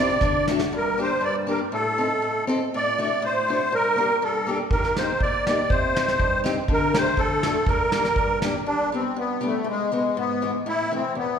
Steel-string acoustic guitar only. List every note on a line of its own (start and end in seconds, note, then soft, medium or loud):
0.00 0.10 C3 medium
0.22 0.60 D3 medium
0.49 0.59 A3 medium
0.49 0.60 D4 medium
0.49 0.61 F#4 medium
0.73 1.10 G2 medium
0.98 1.09 A#3 medium
0.98 1.09 D4 medium
0.98 1.10 G4 medium
1.21 1.59 G2 medium
1.47 1.58 A#3 medium
1.47 1.59 D4 medium
1.47 1.59 G4 medium
1.72 2.10 A2 medium
1.98 2.09 C4 medium
1.98 2.09 D#4 medium
1.98 2.10 A4 medium
2.22 2.59 A2 medium
2.47 2.58 C4 medium
2.47 2.59 D#4 medium
2.47 2.59 A4 medium
2.74 3.10 A2 medium
2.98 3.09 A3 medium
2.98 3.09 D4 medium
2.98 3.09 F#4 medium
3.22 3.59 A2 medium
3.48 3.58 A3 medium
3.48 3.59 D4 soft
3.48 3.59 F#4 medium
3.72 4.09 G2 medium
3.96 4.07 A#3 medium
3.96 4.08 D4 medium
3.96 4.08 G4 medium
4.22 4.59 G2 medium
4.47 4.57 A#3 medium
4.47 4.58 D4 soft
4.47 4.58 G4 medium
4.73 5.09 D#3 medium
4.99 5.08 A#3 medium
4.99 5.09 D#4 medium
4.99 5.09 G4 medium
5.24 5.59 A#2 medium
5.48 5.57 A#3 medium
5.48 5.58 D#4 medium
5.48 5.58 G4 medium
5.72 6.08 C3 medium
5.96 6.06 C4 medium
5.96 6.06 D#4 medium
5.96 6.07 G4 medium
6.20 6.56 G2 medium
6.44 6.55 C4 medium
6.44 6.55 D#4 medium
6.44 6.56 G4 medium
6.69 7.05 D3 medium
6.94 7.04 A3 medium
6.94 7.05 D4 medium
6.94 7.06 G4 medium
7.19 7.55 D3 medium
7.45 7.54 A3 medium
7.45 7.55 D4 soft
7.45 7.55 F#4 medium
7.69 8.05 G2 medium
7.95 8.04 A#3 medium
7.95 8.04 D4 soft
7.95 8.05 G4 medium
8.18 8.54 G2 medium
8.42 8.53 A#3 medium
8.42 8.53 D4 medium
8.42 8.54 G4 medium
8.66 9.03 G2 medium
8.92 9.02 G3 medium
8.92 9.03 B3 medium
8.92 9.04 D4 medium
9.16 9.53 G2 medium
9.41 9.51 G3 medium
9.41 9.52 B3 medium
9.41 9.53 D4 medium
9.64 10.02 G#2 medium
9.92 10.01 E3 medium
9.92 10.02 G#3 medium
9.92 10.02 B3 medium
10.17 10.53 G#2 medium
10.42 10.51 E3 medium
10.42 10.51 G#3 medium
10.42 10.52 B3 medium
10.66 11.02 A2 medium
10.91 11.00 E3 medium
10.91 11.01 A3 medium
10.91 11.01 C4 medium
11.15 11.39 E2 medium